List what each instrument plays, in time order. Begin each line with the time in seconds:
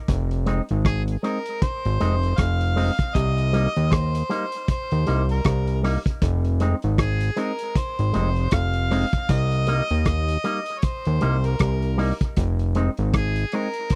0.08 analog synth bass F1, kick, closed hi-hat
0.31 closed hi-hat
0.46 clean electric guitar G#3 C4 D#4, closed hi-hat
0.69 analog synth bass G#1, closed hi-hat
0.85 harmonica G#4, kick, cross-stick, closed hi-hat
1.08 closed hi-hat
1.23 clean electric guitar G#3 C4 D#4, harmonica A#4, closed hi-hat
1.46 closed hi-hat
1.62 harmonica C5, kick, closed hi-hat
1.85 analog synth bass G#1, closed hi-hat
2.00 analog synth bass F1, clean electric guitar G#3 C4 D#4, closed hi-hat
2.23 closed hi-hat
2.38 analog synth bass F1, harmonica F5, kick, cross-stick, closed hi-hat
2.61 closed hi-hat
2.76 clean electric guitar G#3 C4 D#4, open hi-hat
2.99 kick, closed hi-hat
3.15 analog synth bass C2, harmonica D#5, kick, closed hi-hat
3.38 closed hi-hat
3.53 clean electric guitar G3 A#3 D#4, closed hi-hat
3.76 analog synth bass D#2, closed hi-hat
3.92 harmonica C5, kick, cross-stick, closed hi-hat
4.15 closed hi-hat
4.29 clean electric guitar G3 A#3 D#4, closed hi-hat
4.52 closed hi-hat
4.68 harmonica C5, kick, closed hi-hat
4.91 analog synth bass D#2, closed hi-hat
5.07 analog synth bass C2, clean electric guitar G3 A#3 D#4, closed hi-hat
5.29 harmonica A#4, closed hi-hat
5.44 analog synth bass C2, kick, cross-stick, closed hi-hat
5.67 closed hi-hat
5.83 clean electric guitar G3 A#3 D#4, cross-stick, open hi-hat
6.06 kick, closed hi-hat
6.22 analog synth bass F1, kick, closed hi-hat
6.45 closed hi-hat
6.60 clean electric guitar G#3 C4 D#4, closed hi-hat
6.82 analog synth bass G#1, closed hi-hat
6.98 harmonica G#4, kick, cross-stick, closed hi-hat
7.21 closed hi-hat
7.36 clean electric guitar G#3 C4 D#4, harmonica A#4, closed hi-hat
7.59 closed hi-hat
7.75 harmonica C5, kick, closed hi-hat
7.99 analog synth bass G#1, closed hi-hat
8.13 analog synth bass F1, clean electric guitar G#3 C4 D#4, closed hi-hat
8.36 closed hi-hat
8.51 analog synth bass F1, harmonica F5, kick, cross-stick, closed hi-hat
8.74 closed hi-hat
8.91 clean electric guitar G#3 C4 D#4, cross-stick, open hi-hat
9.13 kick, closed hi-hat
9.29 analog synth bass C2, harmonica D#5, kick, closed hi-hat
9.52 closed hi-hat
9.67 clean electric guitar G3 A#3 D#4, closed hi-hat
9.89 analog synth bass D#2, closed hi-hat
10.05 harmonica D#5, kick, cross-stick, closed hi-hat
10.29 closed hi-hat
10.44 clean electric guitar G3 A#3 D#4, closed hi-hat
10.66 closed hi-hat
10.78 harmonica C#5, closed hi-hat
10.83 harmonica C5, kick
11.05 analog synth bass D#2, closed hi-hat
11.21 analog synth bass C2, clean electric guitar G3 A#3 D#4, closed hi-hat
11.44 harmonica A#4, closed hi-hat
11.59 analog synth bass C2, kick, cross-stick, closed hi-hat
11.82 closed hi-hat
11.98 clean electric guitar G3 A#3 D#4, open hi-hat
12.21 kick, closed hi-hat
12.37 analog synth bass F1, kick, closed hi-hat
12.59 closed hi-hat
12.75 clean electric guitar G#3 C4 D#4, closed hi-hat
12.97 analog synth bass G#1, closed hi-hat
13.14 harmonica G#4, kick, cross-stick, closed hi-hat
13.36 closed hi-hat
13.52 clean electric guitar G#3 C4 D#4, harmonica A#4, closed hi-hat
13.74 closed hi-hat
13.90 kick, closed hi-hat